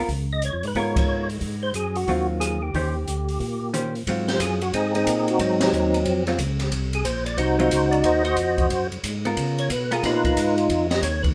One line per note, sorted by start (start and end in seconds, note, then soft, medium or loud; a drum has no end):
0.09 0.50 C#2 medium
0.09 kick soft
0.09 open hi-hat soft
0.33 0.44 D#5 medium
0.42 0.66 C#5 medium
0.42 closed hi-hat soft
0.53 0.63 F2 medium
0.63 0.74 G#2 medium
0.63 open hi-hat soft
0.67 0.77 B4 medium
0.75 1.38 G#2 medium
0.75 1.26 B3 medium
0.75 1.26 F4 medium
0.75 1.26 A#4 medium
0.75 0.96 C#5 medium
0.75 kick soft
0.75 open hi-hat soft
0.96 1.29 C#5 medium
0.96 kick medium
0.96 ride medium
1.30 open hi-hat soft
1.41 1.72 G#2 medium
1.41 kick soft
1.41 open hi-hat soft
1.63 1.74 C5 medium
1.74 2.05 F#2 medium
1.74 1.97 G#4 medium
1.74 closed hi-hat soft
1.96 2.27 F#4 medium
1.96 open hi-hat soft
2.07 2.70 D#2 medium
2.07 2.58 F#3 soft
2.07 2.59 C4 medium
2.07 2.59 F4 medium
2.07 kick soft
2.07 open hi-hat soft
2.40 2.63 G#4 medium
2.40 cross-stick medium
2.40 closed hi-hat medium
2.62 3.70 G4 medium
2.74 3.05 D#2 medium
2.74 2.94 D#3 medium
2.74 2.94 C#4 soft
2.74 2.94 G4 medium
2.74 2.94 C5 medium
2.74 kick soft
2.74 open hi-hat soft
3.07 3.38 D2 medium
3.07 closed hi-hat soft
3.29 open hi-hat soft
3.40 4.03 A#2 medium
3.40 kick soft
3.40 open hi-hat soft
3.73 3.93 D#3 soft
3.73 3.93 C#4 soft
3.73 3.93 G4 soft
3.73 3.93 C5 soft
3.73 cross-stick medium
3.73 closed hi-hat medium
3.95 open hi-hat soft
4.07 4.39 G#2 medium
4.07 4.57 F#3 medium
4.07 4.58 C4 medium
4.07 4.58 F4 medium
4.07 kick soft
4.07 ride medium
4.28 4.40 C5 medium
4.28 snare medium
4.28 ride soft
4.40 4.72 F#2 medium
4.40 4.63 G#4 medium
4.40 kick soft
4.40 hi-hat pedal medium
4.40 ride medium
4.61 4.73 F#4 medium
4.61 ride soft
4.73 5.05 G#2 medium
4.73 4.95 C4 medium
4.73 4.94 D#4 medium
4.73 4.93 G#4 medium
4.73 kick soft
4.73 ride medium
4.95 5.40 C4 medium
4.95 5.39 D#4 medium
4.95 5.29 G#4 medium
4.95 ride soft
5.06 5.38 A#2 medium
5.06 kick soft
5.06 hi-hat pedal medium
5.06 ride medium
5.28 5.40 F#4 medium
5.28 ride soft
5.39 5.71 G#2 medium
5.39 5.60 F#3 medium
5.39 5.61 C4 medium
5.39 5.61 D#4 medium
5.39 kick soft
5.39 ride medium
5.60 6.23 F#3 medium
5.60 6.23 C4 medium
5.60 6.03 D#4 medium
5.60 snare medium
5.60 ride medium
5.72 6.04 D#2 medium
5.72 hi-hat pedal soft
5.94 ride soft
6.05 6.37 F2 medium
6.05 kick soft
6.05 ride medium
6.27 6.38 F#3 medium
6.27 6.38 C4 medium
6.27 6.38 F4 medium
6.27 snare soft
6.27 ride soft
6.38 6.71 C#2 medium
6.38 kick soft
6.38 hi-hat pedal medium
6.38 ride medium
6.59 snare soft
6.59 ride soft
6.71 7.04 C2 medium
6.71 kick soft
6.71 ride medium
6.93 7.06 G#4 medium
6.93 ride soft
7.05 7.37 A#1 medium
7.05 7.24 C5 medium
7.05 kick soft
7.05 hi-hat pedal soft
7.05 ride medium
7.26 7.37 D5 medium
7.26 ride soft
7.37 7.70 C2 medium
7.37 7.60 D#4 medium
7.37 7.60 F#4 medium
7.37 7.57 C5 medium
7.37 kick soft
7.37 ride medium
7.59 7.70 F#3 medium
7.59 7.70 C4 medium
7.59 8.22 D#4 medium
7.59 7.70 F4 medium
7.59 8.04 F#4 medium
7.59 7.90 C5 loud
7.59 ride soft
7.71 8.03 C#2 medium
7.71 kick soft
7.71 hi-hat pedal medium
7.71 ride medium
7.91 8.04 D5 medium
7.91 ride soft
8.03 8.36 D#2 medium
8.03 8.24 F#4 medium
8.03 8.24 C5 medium
8.03 8.23 D#5 loud
8.03 kick soft
8.03 ride medium
8.24 8.87 F#4 medium
8.24 8.87 C5 medium
8.24 8.67 D#5 medium
8.24 ride soft
8.37 8.69 F2 medium
8.37 kick soft
8.37 hi-hat pedal medium
8.37 ride medium
8.58 kick medium
8.58 ride soft
8.70 8.90 F#2 medium
8.70 kick soft
8.70 ride medium
8.92 8.98 F#2 soft
8.92 ride soft
9.03 9.36 G#2 medium
9.03 kick soft
9.03 hi-hat pedal medium
9.03 ride medium
9.25 9.68 B3 soft
9.25 9.68 F4 medium
9.25 9.68 A#4 medium
9.25 ride soft
9.37 9.69 C#3 medium
9.37 kick soft
9.37 ride medium
9.58 9.70 C#5 medium
9.58 ride soft
9.69 10.02 B2 medium
9.69 9.93 B4 medium
9.69 kick soft
9.69 hi-hat pedal soft
9.69 ride medium
9.91 10.34 B3 medium
9.91 10.34 F4 medium
9.91 10.04 G#4 medium
9.91 10.35 A#4 medium
9.91 ride soft
10.03 10.35 A#2 medium
10.03 10.24 D#4 medium
10.03 10.24 F4 medium
10.03 10.24 B4 medium
10.03 kick soft
10.03 snare soft
10.03 ride medium
10.24 10.87 D#4 medium
10.24 10.87 F4 medium
10.24 10.56 B4 medium
10.24 kick soft
10.24 ride soft
10.36 10.68 G#2 medium
10.36 kick soft
10.36 hi-hat pedal medium
10.36 ride medium
10.58 ride soft
10.69 11.02 F2 medium
10.69 kick soft
10.69 ride medium
10.90 11.02 D#5 medium
10.90 snare medium
10.90 ride soft
11.02 11.34 D#2 medium
11.02 11.22 C#5 medium
11.02 kick soft
11.02 hi-hat pedal medium
11.02 ride medium
11.23 11.28 B4 medium
11.23 kick medium
11.23 ride soft